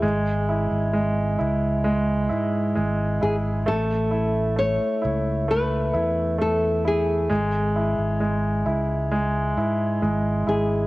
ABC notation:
X:1
M:4/4
L:1/16
Q:1/4=66
K:C#phr
V:1 name="Nylon-string guitar"
G8- G2 z4 G2 | A4 c4 B4 A2 G2- | G8- G2 z4 G2 |]
V:2 name="Grand piano"
G,2 E2 G,2 E2 G,2 E2 G,2 E2 | A,2 E2 A,2 E2 A,2 E2 A,2 E2 | G,2 E2 G,2 E2 G,2 E2 G,2 E2 |]
V:3 name="Fingered electric bass" clef=bass
G,,,3 G,,,3 C,,4 G,,2 G,,,2 G,,,2 | A,,,4- A,,, z C,,4 E,,6 | G,,,3 G,,,3 C,,4 G,,2 G,,,2 G,,,2 |]